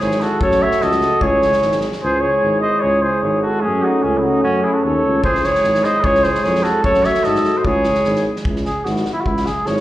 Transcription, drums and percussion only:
0.00 snare
0.11 snare
0.20 snare
0.41 kick
0.51 snare
0.71 snare
0.81 snare
0.91 snare
1.01 snare
1.21 kick
1.42 snare
1.52 snare
1.62 snare
1.71 snare
1.81 snare
1.92 snare
5.24 kick
5.35 snare
5.44 snare
5.55 snare
5.64 snare
5.74 snare
5.84 snare
6.04 kick
6.15 snare
6.23 snare
6.35 snare
6.44 snare
6.55 snare
6.64 snare
6.84 kick
6.94 snare
7.04 snare
7.14 snare
7.24 snare
7.35 snare
7.44 snare
7.65 kick
7.84 snare
7.95 snare
8.04 snare
8.15 snare
8.36 snare
8.45 kick
8.56 snare
8.65 snare
8.86 snare
8.96 snare
9.05 snare
9.26 kick
9.37 snare
9.46 snare
9.66 snare
9.77 snare

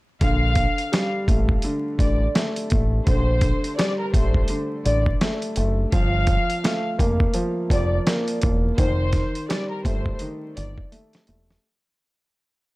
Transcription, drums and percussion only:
0.21 kick, closed hi-hat
0.55 kick, closed hi-hat
0.78 closed hi-hat
0.93 snare, closed hi-hat
1.28 kick, closed hi-hat
1.49 kick
1.62 closed hi-hat
1.99 kick, closed hi-hat
2.35 snare, closed hi-hat
2.56 closed hi-hat
2.70 kick, closed hi-hat
3.07 kick, closed hi-hat
3.41 kick, closed hi-hat
3.64 closed hi-hat
3.79 snare, closed hi-hat
4.14 kick, closed hi-hat
4.34 kick
4.48 closed hi-hat
4.86 closed hi-hat
5.06 kick
5.21 snare, closed hi-hat
5.42 closed hi-hat
5.56 closed hi-hat
5.92 kick, closed hi-hat
6.27 kick, closed hi-hat
6.50 closed hi-hat
6.64 snare, closed hi-hat
6.99 kick, closed hi-hat
7.20 kick
7.34 closed hi-hat
7.70 kick, closed hi-hat
8.07 snare, closed hi-hat
8.28 closed hi-hat
8.42 kick, closed hi-hat
8.78 kick, closed hi-hat
9.13 kick, snare, closed hi-hat
9.35 closed hi-hat
9.50 snare, closed hi-hat
9.85 kick, closed hi-hat
10.06 kick
10.19 closed hi-hat
10.57 closed hi-hat
10.78 kick
10.92 closed hi-hat
11.13 snare, closed hi-hat
11.27 closed hi-hat
11.50 snare

